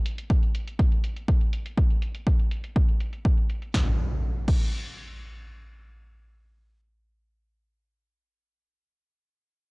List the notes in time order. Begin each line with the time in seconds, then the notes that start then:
0.06 closed hi-hat
0.18 closed hi-hat
0.30 kick, closed hi-hat
0.43 closed hi-hat
0.55 closed hi-hat
0.67 closed hi-hat
0.79 kick, closed hi-hat
0.92 closed hi-hat
1.04 closed hi-hat
1.16 closed hi-hat
1.28 kick, closed hi-hat
1.41 closed hi-hat
1.53 closed hi-hat
1.66 closed hi-hat
1.78 kick, closed hi-hat
1.90 closed hi-hat
2.02 closed hi-hat
2.15 closed hi-hat
2.27 kick, closed hi-hat
2.39 closed hi-hat
2.51 closed hi-hat
2.64 closed hi-hat
2.76 kick, closed hi-hat
2.89 closed hi-hat
3.00 closed hi-hat
3.13 closed hi-hat
3.25 kick, closed hi-hat
3.37 closed hi-hat
3.50 closed hi-hat
3.62 closed hi-hat
3.74 kick, snare, impact
4.48 kick, crash